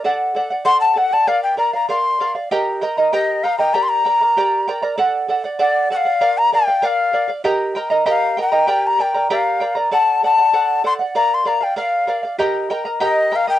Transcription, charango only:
X:1
M:2/4
L:1/16
Q:1/4=97
K:Dphr
V:1 name="Charango"
[Ad^f]2 [Adf] [df] [Adf]2 [Adf] [df] | [Bdf]2 [Bdf] [df] [Bdf]2 [Bdf] [df] | [GBegb]2 [Begb] [Beb] [GBegb]2 [Begb] [Beb] | [GBdgb]2 [Bdgb] [Bdb] [GBdgb]2 [Bdgb] [Bdb] |
[Ad^f]2 [Adf] [df] [Adf]2 [Adf] [df] | [Bdf]2 [Bdf] [df] [Bdf]2 [Bdf] [df] | [GBegb]2 [Begb] [Beb] [GBegb]2 [Begb] [Beb] | [GBdgb]2 [Bdgb] [Bdb] [GBdgb]2 [Bdgb] [Bdb] |
[Ad^f]2 [Adf] [df] [Adf]2 [Adf] [df] | [Bdf]2 [Bdf] [df] [Bdf]2 [Bdf] [df] | [GBegb]2 [Begb] [Beb] [GBegb]2 [Begb] [Beb] |]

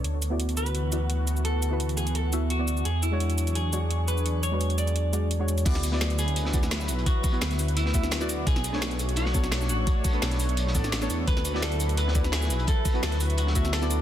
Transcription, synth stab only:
X:1
M:4/4
L:1/16
Q:1/4=171
K:Dlyd
V:1 name="Synth stab"
z3 [B,EFd]6- [B,EFd] [B,EFd] z4 z | z3 [B,EFB]6- [B,EFB] [B,EFe]3 [B,EFd]3 | z3 [G,DFc]6- [G,DFc] [G,DFc] z4 z | z3 [G,DFB]6- [G,DFB] [G,DFd]3 [G,DFc]3 |
[B,EFd]3 [B,EFd]6- [B,EFd] [B,EFd] z4 z | z3 [B,EFB]6- [B,EFB] [B,EFe]3 [B,EFd]3 | z3 [A,B,Dc]6- [A,B,Dc] [B,DAc] z4 z | z3 [B,DAB]6- [B,DAB] [B,DAd]3 [B,DAc]3 |
z3 [B,EFd]6- [B,EFd] [B,EFd] z4 z | z3 [B,EFB]6- [B,EFB] [B,EFe]3 [B,EFd]3 |]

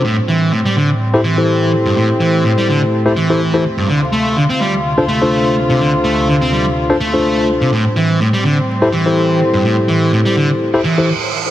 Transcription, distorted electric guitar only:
X:1
M:4/4
L:1/16
Q:"Swing 16ths" 1/4=125
K:Aphr
V:1 name="Distorted electric guitar" clef=bass
A,, z E,2 A,, G, D, z3 E,4 z G,, | A,, z E,2 A,, G, D, z3 E,4 z G,, | D, z A,2 D, C G, z3 A,4 z C, | D, z A,2 D, C G, z3 A,4 z C, |
A,, z E,2 A,, G, D, z3 E,4 z G,, | A,, z E,2 A,, G, D, z3 E,2 z4 |]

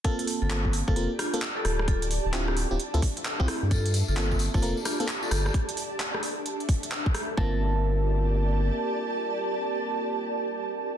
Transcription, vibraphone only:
X:1
M:4/4
L:1/16
Q:"Swing 16ths" 1/4=131
K:Gdor
V:1 name="Vibraphone"
[FA]2 z [FA]2 z2 [FA]2 z [DF]2 z [FA]2 z | [FA] z3 [DF]2 z6 z [CE]2 z | [FA]2 z [FA]2 z2 [FA]2 z [DF]2 z [FA]2 z | z16 |
B16- | B16 |]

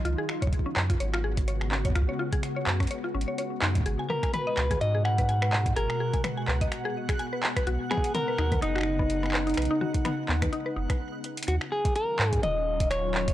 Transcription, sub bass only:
X:1
M:4/4
L:1/8
Q:"Swing 16ths" 1/4=126
K:Ebm
V:1 name="Sub bass" clef=bass
D,, z2 G,, A,,,4 | D,, z2 G,, z A,,, z G,, | A,,, z2 D,, A,,4 | A,,, z2 D,, z4 |
=B,,, z2 ^D,, ^F,,,4 | =B,,, z2 ^D,, z ^F,,, z2 | E,, z2 A,, E,,,4 |]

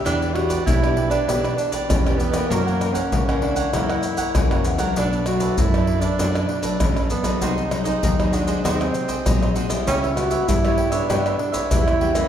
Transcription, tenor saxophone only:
X:1
M:4/4
L:1/16
Q:1/4=98
K:Bm
V:1 name="Tenor saxophone"
D2 F2 E3 D3 D2 C2 B,2 | ^A,3 C3 D2 E6 z2 | D2 F2 E3 D3 D2 C2 B,2 | ^D3 D3 =D2 ^B,6 z2 |
C2 F2 E3 D3 D2 E4 |]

